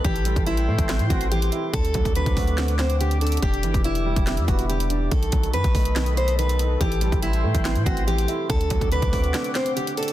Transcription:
Already playing: analog synth pad A4
0.04 808-style bass A1, grand piano E3, steel-string acoustic guitar G4, analog synth pad G5 C6, kick, closed hi-hat
0.16 closed hi-hat
0.25 grand piano G3, closed hi-hat
0.36 808-style bass A1, kick, closed hi-hat
0.47 grand piano E3, steel-string acoustic guitar E4, closed hi-hat
0.57 closed hi-hat
0.68 808-style bass A2, grand piano A3
0.78 808-style bass A1, kick, closed hi-hat
0.89 grand piano E3, snare, clap, closed hi-hat
0.99 808-style bass A2, closed hi-hat
1.10 808-style bass A1, grand piano C4, steel-string acoustic guitar F#4, kick, closed hi-hat
1.21 closed hi-hat
1.31 grand piano E3, steel-string acoustic guitar G4, closed hi-hat
1.42 closed hi-hat
1.52 grand piano E4, closed hi-hat
1.73 808-style bass D2, grand piano D3, analog synth pad C4 F#5 D6, steel-string acoustic guitar A4, kick, closed hi-hat
1.85 closed hi-hat
1.94 808-style bass D2, grand piano F#3, kick, closed hi-hat
2.05 kick, closed hi-hat
2.15 grand piano D3, steel-string acoustic guitar B4, closed hi-hat
2.26 808-style bass D2, kick, closed hi-hat
2.37 grand piano A3, kick, open hi-hat
2.47 closed hi-hat
2.58 grand piano D3, snare, clap, closed hi-hat
2.68 closed hi-hat
2.79 grand piano C4, steel-string acoustic guitar C5, snare, clap, closed hi-hat
2.90 closed hi-hat
3.00 grand piano D3, steel-string acoustic guitar G4, closed hi-hat
3.11 closed hi-hat
3.21 grand piano D4, steel-string acoustic guitar A4, closed hi-hat
3.27 closed hi-hat
3.32 closed hi-hat
3.37 closed hi-hat
3.42 808-style bass E1, grand piano D3, analog synth pad G4 E5, steel-string acoustic guitar G4, kick, closed hi-hat
3.54 closed hi-hat
3.63 808-style bass G1, grand piano E3, closed hi-hat
3.74 808-style bass E1, kick, closed hi-hat
3.84 grand piano D3, steel-string acoustic guitar E4, closed hi-hat
3.95 closed hi-hat
4.06 grand piano G3
4.16 808-style bass E1, kick, closed hi-hat
4.27 grand piano D3, snare, clap, closed hi-hat
4.37 808-style bass E2, closed hi-hat
4.48 808-style bass E1, grand piano B3, steel-string acoustic guitar F#4, kick, closed hi-hat
4.59 closed hi-hat
4.69 grand piano D3, steel-string acoustic guitar G4, closed hi-hat
4.80 closed hi-hat
4.90 grand piano D4, closed hi-hat
5.11 808-style bass B1, grand piano D#3, steel-string acoustic guitar A4, analog synth pad A4 D#5 B5, kick, closed hi-hat
5.23 closed hi-hat
5.32 808-style bass B1, grand piano F#3, kick, closed hi-hat
5.43 closed hi-hat
5.53 808-style bass F#2, grand piano D#3, steel-string acoustic guitar B4, closed hi-hat
5.64 808-style bass B1, kick, closed hi-hat
5.75 808-style bass B1, grand piano A3, kick, open hi-hat
5.85 closed hi-hat
5.96 grand piano D#3, snare, clap, closed hi-hat
6.06 closed hi-hat
6.17 grand piano B3, steel-string acoustic guitar C5, closed hi-hat
6.28 closed hi-hat
6.38 grand piano D#3, steel-string acoustic guitar B4, closed hi-hat
6.49 closed hi-hat
6.59 grand piano D#4, closed hi-hat
6.80 808-style bass A1, grand piano E3, steel-string acoustic guitar G4, analog synth pad G5 C6, kick, closed hi-hat
6.92 closed hi-hat
7.01 grand piano G3, closed hi-hat
7.12 808-style bass A1, kick, closed hi-hat
7.22 grand piano E3, steel-string acoustic guitar E4, closed hi-hat
7.33 closed hi-hat
7.44 808-style bass A2, grand piano A3
7.55 808-style bass A1, kick, closed hi-hat
7.65 grand piano E3, snare, clap, closed hi-hat
7.75 808-style bass A2, closed hi-hat
7.86 808-style bass A1, grand piano C4, steel-string acoustic guitar F#4, kick, closed hi-hat
7.97 closed hi-hat
8.07 grand piano E3, steel-string acoustic guitar G4, closed hi-hat
8.18 closed hi-hat
8.28 grand piano E4, closed hi-hat
8.49 808-style bass D2, grand piano D3, analog synth pad C4 F#5 D6, steel-string acoustic guitar A4, kick, closed hi-hat
8.61 closed hi-hat
8.70 808-style bass D2, grand piano F#3, kick, closed hi-hat
8.81 kick, closed hi-hat
8.91 grand piano D3, steel-string acoustic guitar B4, closed hi-hat
9.02 808-style bass D2, kick, closed hi-hat
9.13 grand piano A3, kick, open hi-hat
9.24 closed hi-hat
9.34 grand piano D3, snare, clap, closed hi-hat
9.44 closed hi-hat
9.55 grand piano C4, steel-string acoustic guitar C5, snare, clap, closed hi-hat
9.66 closed hi-hat
9.76 grand piano D3, steel-string acoustic guitar G4, closed hi-hat
9.87 closed hi-hat
9.97 grand piano D4, steel-string acoustic guitar A4, closed hi-hat
10.03 closed hi-hat
10.08 closed hi-hat

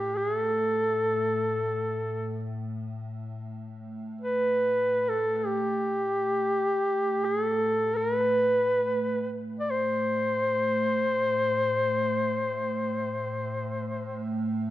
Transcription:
Already playing: ambient pad A2, duduk G4
0.17 duduk G#4
0.37 duduk A4
3.56 ambient pad A2
4.21 duduk B4
5.09 duduk A4
5.37 duduk A4
5.46 duduk G4
7.25 duduk G#4
7.44 duduk A4
7.96 duduk A#4
8.15 duduk B4
9.60 duduk D5
9.71 duduk C5

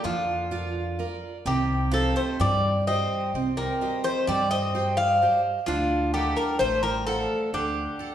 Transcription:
Already playing: steel-string acoustic guitar F4 A#4 D5
0.04 upright bass F2, bouzouki D3 F4, steel-string acoustic guitar F3
0.51 steel-string acoustic guitar F4 A#4 D5
0.99 steel-string acoustic guitar F4 A#4 D5
1.46 upright bass C2, bouzouki D#3 G4, steel-string acoustic guitar C4
1.91 bouzouki F3 A4, steel-string acoustic guitar D#4 G4 C5
2.16 bouzouki A3 C5
2.40 upright bass G2, bouzouki G3 D5, steel-string acoustic guitar G3
2.87 bouzouki C4 D#5, steel-string acoustic guitar G4 C5 D#5
3.34 upright bass C2, steel-string acoustic guitar C4
3.57 bouzouki G3 A#4
3.81 steel-string acoustic guitar G4 C5 D#5
4.04 bouzouki A3 C5
4.27 upright bass G2, bouzouki G3 D5, steel-string acoustic guitar G3
4.51 bouzouki C4 D#5
4.75 steel-string acoustic guitar G4 C5 G5
4.97 bouzouki D4 F5
5.22 steel-string acoustic guitar G4 C5 D#5
5.66 upright bass D2, bouzouki D3 F4, steel-string acoustic guitar D4
6.14 bouzouki D#3 G4, steel-string acoustic guitar A4 D5 F#5
6.36 bouzouki G3 A#4
6.59 upright bass A1, steel-string acoustic guitar A3, bouzouki A3 C5
6.83 bouzouki G3 A#4
7.07 bouzouki F3 A4, steel-string acoustic guitar A4 D5 F#5
7.53 upright bass D2, bouzouki D3 G4, steel-string acoustic guitar D4
7.99 steel-string acoustic guitar A4 D5 F#5

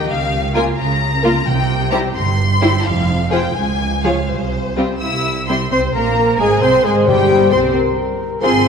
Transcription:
0.08 double bass section C#2, cello section C#3, violin section F5
0.55 viola section A#3 F4, violin section F4 A#4 G#5
0.77 double bass section C#2, cello section C#3, violin section A#5
1.23 viola section A#3 F4, violin section F4 A#4
1.46 double bass section C2, timpani C3, cello section C3, violin section G5
1.90 viola section G3 E4, violin section G4 C5 A#5
2.15 double bass section G1, cello section G2, violin section C6
2.62 viola section G3 E4, violin section G4 C5
2.85 double bass section F1, cello section F2, violin section F5
3.31 viola section F3 F4, violin section G#4 C5 G5
3.54 cello section C#2, double bass section C#2, violin section G#5
4.04 viola section F3 F4, violin section G#4 C#5 F5
4.28 cello section C2, double bass section C2, violin section C5
4.77 viola section G3 C4, violin section F4 G4
4.99 double bass section C2, cello section C2 E4, violin section E6
5.47 viola section G3 C4, cello section C4, violin section E4 G4 C6
5.71 double bass section C2, viola section C4, bassoon C4, cello section C4, clarinet C5, violin section C5 C6, flute section C6
5.93 double bass section A#1, bassoon A#3, viola section A#3, cello section A#3, clarinet A#4, violin section A#4 A#5, flute section A#5
6.38 double bass section G#1, cello section G#3, bassoon G#3, viola section G#3, clarinet G#4, violin section G#4 G#5, french horn section C5, flute section G#5
6.61 double bass section C2, bassoon C4, viola section C4, cello section C4, violin section C5 C6, clarinet C5, flute section C6
6.84 double bass section G#1, bassoon G#3, cello section G#3, viola section G#3, clarinet G#4, violin section G#4 G#5, flute section G#5
7.07 double bass section G1, timpani G2, bassoon G3, cello section G3, viola section G3, clarinet G4, violin section G4 G5, flute section G5
7.50 double bass section C2, bassoon C4, cello section C4, viola section C4, clarinet C5, violin section C5 C6, flute section C6
7.74 french horn section A#4
8.41 double bass section G#1, bassoon F3, cello section C4, viola section C4 F4, french horn section G#4, violin section G#4 C5 C6, clarinet C5, flute section G#5

